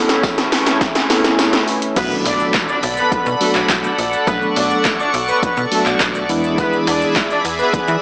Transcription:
Already playing: A3 B3 C#4 E4 A4 B4
0.09 snare, closed hi-hat, shaker
0.23 kick, snare, tambourine, shaker
0.38 snare, closed hi-hat, shaker
0.52 snare, open hi-hat, tambourine, shaker
0.66 snare, closed hi-hat, shaker
0.81 kick, snare, tambourine, shaker
0.95 snare, closed hi-hat, shaker
1.10 B3 C#4 E4 A4, snare, open hi-hat, tambourine, shaker
1.24 snare, closed hi-hat, shaker
1.39 snare, tambourine, shaker
1.53 snare, closed hi-hat, shaker
1.68 open hi-hat, tambourine, shaker
1.82 closed hi-hat, shaker
1.96 B1 F#3 A3 B3 D4 F#4 A4 B4 D5 F#5 B5, kick, closed hi-hat, crash, tambourine, impact, shaker
2.11 shaker
2.25 B1 D4 D5, open hi-hat, tambourine, shaker
2.40 shaker
2.54 kick, snare, clap, closed hi-hat, tambourine, shaker
2.69 D4 D5, shaker
2.83 B1, open hi-hat, tambourine, shaker
2.97 B3 B4, shaker
3.12 B2 B3 B4, kick, closed hi-hat, shaker
3.26 B2, shaker
3.41 F#3 A3 B3 D4 F#4 A4, open hi-hat, tambourine, shaker
3.55 B1, clap, shaker
3.69 B1, kick, snare, clap, closed hi-hat, tambourine, shaker
3.84 shaker
3.98 A#1, open hi-hat, tambourine, shaker
4.13 shaker
4.27 B1 F#3 A3 B3 D4 A4 B4 C#6, kick, closed hi-hat, tambourine, shaker
4.42 shaker
4.56 B1 D4 D5, open hi-hat, tambourine, shaker
4.71 shaker
4.85 kick, snare, clap, closed hi-hat, tambourine, shaker
4.99 D4 D5, shaker
5.14 B1, open hi-hat, tambourine, shaker
5.28 B3 B4, shaker
5.43 B2 B3 B4, kick, closed hi-hat, shaker
5.57 B2, shaker
5.71 F#3 A3 B3 D4 F#4 A4, open hi-hat, shaker
5.86 B1, clap, shaker
6.00 B1, kick, snare, clap, closed hi-hat, tambourine, shaker
6.15 shaker
6.29 E2 E3 G#3 B3 D4 E4 G#4 E5 B5, open hi-hat, tambourine, shaker
6.44 shaker
6.58 B3 B4, kick, closed hi-hat, tambourine, shaker
6.73 shaker
6.87 E2 D4 D5, open hi-hat, tambourine, shaker
7.02 shaker
7.16 kick, snare, clap, closed hi-hat, tambourine, shaker
7.30 D4 D5, shaker
7.45 E2, open hi-hat, tambourine, shaker
7.59 B3 B4, shaker
7.73 E3 B3 B4, kick, closed hi-hat, shaker
7.88 E3, shaker

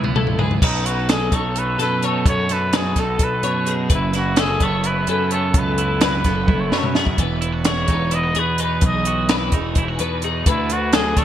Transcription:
Already playing: C#2 E3 E4 B4
0.04 B3, mid tom
0.16 E4 A4, mid tom
0.27 floor tom
0.39 C#2 G#2 G#4 B4, floor tom
0.51 floor tom
0.62 B1 B2 F#3 C#4 D#4 A4 B4, kick, crash
0.86 D#4 F#4, closed hi-hat
1.09 F#3 G#4 A4, snare, closed hi-hat
1.32 B1 D#4 A4 C#5, kick, closed hi-hat
1.56 A4 B4, closed hi-hat
1.79 F#2 B2 A4 B4, snare, closed hi-hat
2.02 D#4 A4 C#5, closed hi-hat
2.25 F#2 B2 A4 C#5, kick, closed hi-hat
2.49 A4 B4, snare, closed hi-hat
2.73 F#3 G#4 B4, snare, closed hi-hat
2.96 B1 D#4 A4, kick, snare, closed hi-hat
3.00 A4
3.19 B1 A4, kick, closed hi-hat
3.24 B4
3.43 F#2 B2 C#5, closed hi-hat
3.66 D#4 G#4, closed hi-hat
3.90 F#1 F#2 E4 B4, kick, closed hi-hat
4.13 E4 F#4, snare, closed hi-hat
4.36 F#3 G#4 A4, snare, closed hi-hat
4.60 F#1 B3 A4 C#5, kick, closed hi-hat
4.84 E4 B4, closed hi-hat
5.07 F#2 C#3 A4 B4, closed hi-hat
5.31 B3 A4 C#5, closed hi-hat
5.54 C#2 F#2 A4 B4, kick, closed hi-hat
5.78 E4, closed hi-hat
6.01 F#3 B4, snare, closed hi-hat
6.24 F#1 B3 A4, kick, snare, closed hi-hat
6.48 F#1 E4, kick, high tom
6.60 C#5
6.69 F#2 C#3 B4 C#5, snare
6.78 A4
6.83 B4, mid tom
6.95 B3 G#4, snare
7.07 kick
7.17 E1 E2 B4, kick, closed hi-hat
7.41 E4, closed hi-hat
7.53 F#4
7.65 E3 G#4 C#5, snare, closed hi-hat
7.88 E1 D#4 B4, kick, closed hi-hat
8.11 E4 D#5, closed hi-hat
8.23 F#4
8.35 E2 B2 G#4, closed hi-hat
8.39 B4
8.58 D#4 B4, closed hi-hat
8.62 B4
8.81 B1 E2 G#4, kick, closed hi-hat
8.86 D#5
9.05 F#4, closed hi-hat
9.29 E3 B4, snare, closed hi-hat
9.52 E1 D#4 G#4, kick, closed hi-hat
9.75 E1 E4, kick, closed hi-hat
9.88 F#4
9.99 E2 B2 B4, closed hi-hat
10.22 D#4 G#4, closed hi-hat
10.46 D2 D3 E4 B4, kick, closed hi-hat
10.70 D4 F#4, closed hi-hat
10.93 F#3 G#4 A4, snare, closed hi-hat
11.17 D2 D4 A4 C#5, kick, closed hi-hat

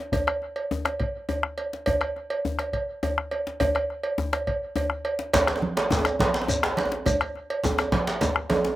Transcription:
0.12 bombo low, cowbell, djembe tone, djembe bass
0.27 bombo rim, cowbell
0.42 djembe slap
0.56 cowbell
0.71 djembe tone, djembe bass
0.85 bombo rim, cowbell, djembe slap
1.00 bombo low, cowbell
1.29 cowbell, djembe slap, djembe tone, djembe bass
1.43 bombo rim
1.58 cowbell, djembe slap
1.73 djembe slap
1.86 bombo low, cowbell, djembe tone, djembe bass
2.01 bombo rim, cowbell
2.16 djembe slap
2.30 cowbell
2.45 djembe tone, djembe bass
2.59 bombo rim, cowbell, djembe slap
2.73 bombo low, cowbell
3.03 cowbell, djembe slap, djembe tone, djembe bass
3.18 bombo rim
3.31 cowbell, djembe slap
3.47 djembe slap
3.60 bombo low, cowbell, djembe tone, djembe bass
3.75 bombo rim, cowbell
3.90 bombo rim
4.03 cowbell
4.18 bombo rim, djembe slap, djembe tone, djembe bass
4.33 bombo rim, cowbell, djembe slap
4.47 bombo low, cowbell, djembe slap
4.76 cowbell, djembe tone, djembe bass
4.90 bombo rim
5.05 bombo rim, cowbell
5.19 djembe slap
5.33 bombo low, cowbell, djembe slap, high conga, djembe tone, low conga, djembe bass, shekere
5.47 bombo rim, cowbell, djembe slap
5.56 djembe tone
5.62 djembe slap, high conga
5.77 cowbell, djembe slap
5.90 djembe slap, high conga, djembe tone, low conga, djembe bass, shekere
5.99 djembe tone
6.05 bombo rim, cowbell, djembe slap, shekere
6.19 bombo low, cowbell, djembe slap, high conga
6.34 djembe slap, shekere
6.42 djembe tone
6.48 cowbell, djembe slap, djembe tone, djembe bass, shekere
6.63 bombo rim, djembe slap
6.77 cowbell, djembe slap, high conga
6.85 djembe tone
6.92 djembe slap
7.06 bombo low, cowbell, high conga, djembe tone, low conga, djembe bass, shekere
7.21 bombo rim, cowbell
7.35 djembe slap
7.50 cowbell
7.64 high conga, djembe tone, low conga, djembe bass, shekere
7.78 bombo rim, cowbell, djembe slap, djembe tone, shekere
7.92 bombo low, cowbell, djembe slap, high conga
8.07 djembe slap, shekere
8.21 cowbell, djembe slap, djembe tone, low conga, djembe bass, shekere
8.36 bombo rim
8.50 cowbell, djembe slap, djembe tone, high conga
8.65 djembe slap, djembe tone

